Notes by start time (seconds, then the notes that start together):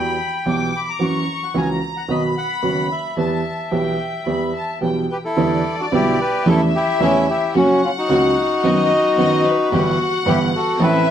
Already playing: E2 E3 G3 B3 F#4 G5 B5
0.46 B1 B2 E3 G3 B3 F#4 D6
0.76 B5
0.90 A#5
0.99 F#2 E3 F#3 A#3 C#4 F#4 C#6
1.44 F#5
1.54 C#2 C#3 E3 A#3 C#4 F#4 G#5 A#5
1.83 A#5
1.97 F#5
2.08 B1 B2 D#3 F#3 B3 F#4 D#5 B5
2.38 F#5
2.63 F#1 F#2 D#3 F#3 B3 F#4
2.92 E5
3.17 E2 E3 G3 B3 G4 A5
3.71 B1 B2 E3 G3 B3 G4 G5
4.26 E2 E3 G3 B3 G4 B5
4.54 A5
4.81 B1 B2 E3 G3 B3 G4 G5
5.09 G4 B4 G5
5.25 E4 A4
5.37 E2 D3 E3 G3 B3 D4 E4 D5
5.80 D4 F#4
5.92 B1 B2 D3 G3 B3 D4 E4 G4
6.21 G4 B4
6.46 E2 C#3 E3 G3 A3 C#4 E4 G4 A4 E5
6.50 E4
6.75 E4 G4
7.00 E2 C#3 E3 G3 A3 C#4 E4 G4
7.30 E4 G4
7.54 F#2 C#3 F#3 A#3 C#4 F#4 F#5
7.84 C#4 F4
7.98 D#4 F#4
8.09 C#2 C#3 F#3 A#3 C#4 F#4
8.63 F#2 D#3 F#3 B3 D#4 F#4 D#5
9.17 F#2 D#3 F#3 B3 D#4 F#4 D#5
9.45 B4
9.72 G1 G2 E3 G3 B3 E4 G4 F#5
10.26 G1 G2 E3 G3 B3 E4 G4
10.56 F#4 A4
10.79 A1 A2 E3 A3 C4 E4 A4 B4 E5